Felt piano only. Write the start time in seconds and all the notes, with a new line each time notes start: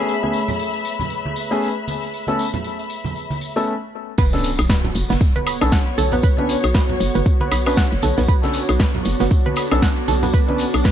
Already playing: A3 B3 C#4 G#4
0.23 A3 B3 C#4 G#4
1.51 A3 B3 C#4 G#4
2.28 A3 B3 C#4 A4
3.56 A3 B3 C#4 A4
4.33 B3 C#4 D4 A4
5.61 B3 C#4 D4 A4
6.38 B3 C#4 D4 B4
7.66 B3 C#4 D4 B4
8.43 B3 C#4 D4 A4
9.71 B3 C#4 D4 A4
10.48 B3 C#4 D4 B4